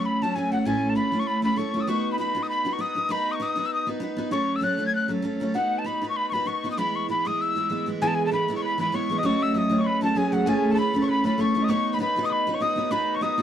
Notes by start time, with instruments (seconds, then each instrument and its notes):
Already playing: steel-string acoustic guitar F#3 A3 C#4 F#4
0.05 tin whistle B5
0.22 steel-string acoustic guitar F#3 A3 C#4 F#4, tin whistle A5
0.35 steel-string acoustic guitar F#3 A3 C#4 F#4, tin whistle G#5
0.52 steel-string acoustic guitar F#3 A3 C#4 F#4, tin whistle F#5
0.65 steel-string acoustic guitar A2 A3 C#4 E4 A4, tin whistle G#5
0.89 tin whistle A5
0.95 steel-string acoustic guitar A3 C#4 E4 A4, tin whistle B5
1.12 steel-string acoustic guitar A3 C#4 E4 A4
1.20 tin whistle C#6
1.27 tin whistle B5
1.42 steel-string acoustic guitar A3 C#4 E4 A4, tin whistle B5
1.56 steel-string acoustic guitar A3 C#4 E4 A4, tin whistle C#6
1.74 steel-string acoustic guitar A3 C#4 E4 A4
1.80 tin whistle D#6 E6
1.87 steel-string acoustic guitar B3 D#4 F#4 B4, tin whistle C#6
2.12 tin whistle B5
2.18 steel-string acoustic guitar B3 D#4 F#4 B4, tin whistle B5
2.35 steel-string acoustic guitar B3 D#4 F#4 B4
2.43 tin whistle D#6
2.49 tin whistle B5
2.65 steel-string acoustic guitar B3 D#4 F#4 B4
2.73 tin whistle C#6
2.79 steel-string acoustic guitar B3 D#4 F#4 B4, tin whistle D#6
2.95 steel-string acoustic guitar B3 D#4 F#4 B4
3.09 steel-string acoustic guitar B3 D#4 F#4 B4, tin whistle B5
3.31 tin whistle C#6 D#6
3.40 steel-string acoustic guitar B3 D#4 F#4 B4, tin whistle D#6
3.56 steel-string acoustic guitar B3 D#4 F#4 B4
3.64 tin whistle E6
3.72 tin whistle D#6
3.87 steel-string acoustic guitar B3 D#4 F#4 B4
4.00 steel-string acoustic guitar B3 D#4 F#4 B4
4.17 steel-string acoustic guitar B3 D#4 F#4 B4
4.31 steel-string acoustic guitar F#3 A3 C#4 A4, tin whistle C#6
4.56 tin whistle E6
4.61 steel-string acoustic guitar F#3 A3 C#4 A4, tin whistle F#6
4.77 steel-string acoustic guitar F#3 A3 C#4 A4
4.86 tin whistle G#6
4.94 tin whistle F#6
5.08 steel-string acoustic guitar F#3 A3 C#4 A4
5.22 steel-string acoustic guitar F#3 A3 C#4 A4
5.40 steel-string acoustic guitar F#3 A3 C#4 A4
5.54 steel-string acoustic guitar B3 D#4 F#4 B4, tin whistle F#5
5.78 tin whistle A5
5.84 steel-string acoustic guitar B3 D#4 F#4 B4, tin whistle B5
6.02 steel-string acoustic guitar B3 D#4 F#4 B4
6.09 tin whistle C#6
6.16 tin whistle B5
6.29 steel-string acoustic guitar B3, tin whistle B5 C#6
6.33 steel-string acoustic guitar D#4 F#4 B4
6.45 steel-string acoustic guitar B3 D#4 F#4 B4, tin whistle C#6
6.64 steel-string acoustic guitar B3 D#4 F#4 B4
6.70 tin whistle D#6
6.77 steel-string acoustic guitar E3 G#3 B3 E4, tin whistle B5
6.96 tin whistle C#6
7.09 steel-string acoustic guitar E3 G#3 B3 E4, tin whistle B5
7.25 steel-string acoustic guitar E3 G#3 B3 E4, tin whistle D#6
7.41 tin whistle E6
7.55 steel-string acoustic guitar E3 G#3 B3 E4
7.70 steel-string acoustic guitar E3 G#3 B3 E4
7.86 steel-string acoustic guitar E3 G#3 B3 E4
8.02 steel-string acoustic guitar E3 G#3 B3 E4, harp G#4, tin whistle G#5
8.07 tin whistle A5
8.15 tin whistle G#5
8.26 harp A4, tin whistle A5
8.31 steel-string acoustic guitar E3 G#3 B3 E4, harp B4, tin whistle B5
8.48 steel-string acoustic guitar E3 G#3 B3 E4
8.55 harp C#5, tin whistle C#6
8.62 harp B4, tin whistle B5
8.78 steel-string acoustic guitar E3 G#3 B3 E4, harp B4, tin whistle B5
8.92 steel-string acoustic guitar E3 G#3 B3 E4, harp C#5, tin whistle C#6
9.09 steel-string acoustic guitar E3 G#3 B3 E4
9.18 harp D#5, tin whistle D#6
9.23 steel-string acoustic guitar F#3 A3 C#4 F#4, harp C#5, tin whistle C#6
9.42 harp E5, tin whistle E6
9.54 steel-string acoustic guitar F#3 A3 C#4 F#4, harp D#5, tin whistle D#6
9.69 steel-string acoustic guitar F#3 A3 C#4 F#4
9.78 harp C#5, tin whistle C#6 D#6
9.84 harp B4, tin whistle B5
10.01 steel-string acoustic guitar F#3 A3 C#4 F#4, harp A4, tin whistle A5
10.15 steel-string acoustic guitar F#3 A3 C#4 F#4, harp G#4, tin whistle G#5
10.32 steel-string acoustic guitar F#3 A3 C#4 F#4, harp F#4, tin whistle F#5
10.46 steel-string acoustic guitar A2 A3 C#4 E4 A4, harp G#4, tin whistle G#5
10.70 harp A4, tin whistle A5
10.76 steel-string acoustic guitar A3 C#4 E4 A4, harp B4, tin whistle B5
10.80 tin whistle B5
10.93 steel-string acoustic guitar A3 C#4 E4 A4
11.01 harp C#5, tin whistle C#6
11.08 harp B4, tin whistle B5
11.24 steel-string acoustic guitar A3 C#4 E4 A4, harp B4, tin whistle B5
11.38 steel-string acoustic guitar A3 C#4 E4 A4, harp C#5, tin whistle C#6
11.54 steel-string acoustic guitar A3 C#4 E4 A4
11.62 harp D#5, tin whistle D#6
11.68 steel-string acoustic guitar B3 D#4 F#4 B4, harp C#5, tin whistle C#6
11.93 harp B4, tin whistle B5
11.99 steel-string acoustic guitar B3 D#4 F#4 B4, harp B4, tin whistle B5
12.16 steel-string acoustic guitar B3 D#4 F#4 B4
12.23 harp D#5, tin whistle D#6
12.30 harp B4, tin whistle B5
12.47 steel-string acoustic guitar B3 D#4 F#4 B4
12.54 harp C#5, tin whistle C#6
12.60 steel-string acoustic guitar B3 D#4 F#4 B4, harp D#5, tin whistle D#6
12.76 steel-string acoustic guitar B3 D#4 F#4 B4, harp C#5
12.91 steel-string acoustic guitar B3 D#4 F#4 B4, harp B4, tin whistle B5
13.13 harp C#5, tin whistle B5 C#6
13.21 steel-string acoustic guitar B3 D#4 F#4 B4, harp D#5, tin whistle D#6
13.38 steel-string acoustic guitar B3 D#4